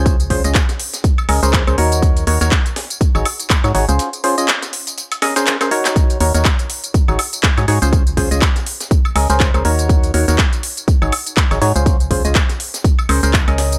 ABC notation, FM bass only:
X:1
M:4/4
L:1/16
Q:"Swing 16ths" 1/4=122
K:Ebdor
V:1 name="FM bass" clef=bass
D,,2 D,, D,, z6 D,, D,,2 D,, E,,2- | E,,2 E,, E,, z4 z A,,, z3 A,, A,,, D,, | z16 | z2 E,, E,, z4 z A,,, z3 A,, A,, D,,- |
D,,2 D,, D,, z6 D,, D,,2 D,, E,,2- | E,,2 E,, E,, z4 z A,,, z3 A,,, A,, D,,- | D,,2 D,, D,, z6 D,, D,,2 D,,3 |]